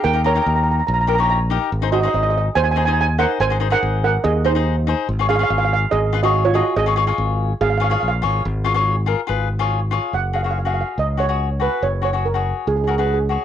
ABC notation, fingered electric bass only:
X:1
M:4/4
L:1/8
Q:1/4=143
K:F#
V:1 name="Fingered electric bass" clef=bass
D,,2 D,,2 A,,,4 | G,,,2 G,,,2 D,,4 | G,,,2 G,,,2 D,,4 | G,,,2 G,,,2 G,,,4 |
G,,,2 G,,,2 G,,,2 A,,, G,,, | G,,,4 G,,,4 | F,,,4 C,,4 | F,,,4 C,,4 |]